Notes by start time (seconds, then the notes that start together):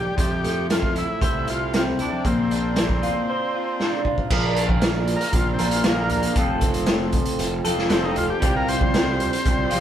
Already playing: G3 A#3 D#4 G4 A#4 G5
0.04 high conga
0.17 F2 F3 G4 C5 E5 A5, kick, closed hi-hat
0.42 A3, closed hi-hat, low conga
0.70 A3 F4, snare, closed hi-hat
0.82 kick, high conga
0.95 E4, closed hi-hat, low conga
1.22 C2 E4 C5, kick, closed hi-hat
1.47 E4 F4, closed hi-hat
1.74 C4 F4, snare, closed hi-hat
1.85 high conga
1.98 D4 E4, closed hi-hat, low conga
2.11 high conga
2.23 A#1 A#3 C4 D5 A#5, kick, closed hi-hat
2.38 high conga
2.51 D4, closed hi-hat
2.76 A#3, snare, closed hi-hat, high conga
2.89 kick, high conga
3.01 F4, closed hi-hat, low conga
3.30 C5
3.55 F4
3.80 D4, snare
4.05 F4, kick
4.18 kick
4.30 A#1 A#2 F3 A#3 D4 F4 A#4 D5 A#5, kick, crash
4.56 closed hi-hat
4.69 kick, high conga
4.81 snare, closed hi-hat
5.08 closed hi-hat
5.16 A#4
5.21 closed hi-hat
5.33 A#1 F4, kick, closed hi-hat
5.53 C4
5.58 A#1 A#2 F3 A#3 D4 F4 A#4, closed hi-hat, high conga
5.70 F4, closed hi-hat
5.84 A#1 A#2 F3 A#3 D4 F4 A#4, snare, closed hi-hat
5.88 A#3
6.04 A#3
6.10 closed hi-hat, high conga, low conga
6.23 closed hi-hat
6.36 F1 F3 A3 C4 F4 A4 C5 A5, kick, closed hi-hat
6.61 kick, closed hi-hat
6.74 closed hi-hat, high conga
6.86 snare, closed hi-hat
7.12 kick, closed hi-hat, low conga
7.25 closed hi-hat
7.39 F1, closed hi-hat
7.65 F1 F3 A3 C4 F4 A4, closed hi-hat, high conga
7.78 snare
7.88 F1 F3 A3 B3 C4 F4 A4, snare, closed hi-hat
7.93 C4
8.04 D#4
8.16 F4, closed hi-hat, high conga, low conga
8.30 G4
8.40 C2 C3 F3 G3 F4 G4 G5, kick, closed hi-hat
8.56 A#4
8.68 C5, closed hi-hat
8.81 kick, high conga
8.94 snare, closed hi-hat
9.20 closed hi-hat, low conga
9.33 closed hi-hat
9.45 C2, kick, closed hi-hat
9.70 C2 C3 F3 G3 F4 G4, closed hi-hat, high conga